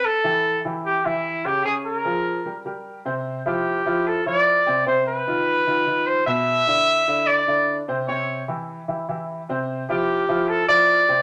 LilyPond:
<<
  \new Staff \with { instrumentName = "Trumpet" } { \time 4/4 \key f \lydian \tempo 4 = 149 a'4. r8 g'8 e'4 g'8 | aes'8 bes'2 r4. | r8 g'4. a'8 d''4. | c''8 b'2~ b'8 c''8 e''8~ |
e''2 d''4. r8 | des''4 r2. | r8 g'4. a'8 d''4. | }
  \new Staff \with { instrumentName = "Upright piano" } { \time 4/4 \key f \lydian r8 <e e' g'>4 <e e' g'>4 <e e' g'>4 <des des' des''>8 | <des des' des''>4 <f f' aes'>4 <g g' bes'>8 <g g' bes'>4 <c c' c''>8~ | <c c' c''>8 <f e' f'>4 <f e' f'>4 <f e' f'>4 <c c' c''>8 | <c c' c''>4 <ees ees' f'>4 <ees ees' f'>8 <ees ees' f'>4 <b, b b'>8~ |
<b, b b'>8 <d d' e'>4 <d d' e'>4 <d d' e'>4 <c c' c''>8 | <c c' des''>4 <e e' g'>4 <e e' g'>8 <e e' g'>4 <c c' c''>8~ | <c c' c''>8 <f e' f'>4 <f e' f'>4 <f e' f'>4 <c c' c''>8 | }
>>